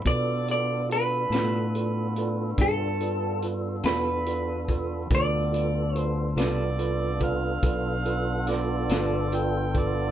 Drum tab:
HH |xxxxxxxxxxxx|xxxxxxxxxxxx|
SD |---o-----o--|---o----oo--|
BD |o-----o----o|o----oo----o|